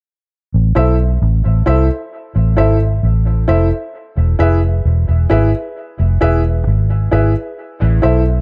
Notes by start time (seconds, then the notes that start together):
0.54 A1
0.75 B1 E4 A4 C5 E5
1.22 A1
1.46 A1
1.66 C2 E4 A4 C5 E5
2.36 A1
2.57 G#1 E4 A4 C5 E5
3.03 A1
3.48 F1 E4 A4 C5 E5
4.17 E1
4.39 F1 E4 G#4 B4 E5
4.85 E1
5.09 E1
5.30 G#1 E4 G#4 B4 E5
5.99 F1
6.21 E1 E4 G#4 B4 E5
6.67 G#1
7.11 G#1 E4 G#4 B4 E5
7.82 A1
8.02 B1 E4 A4 C5 E5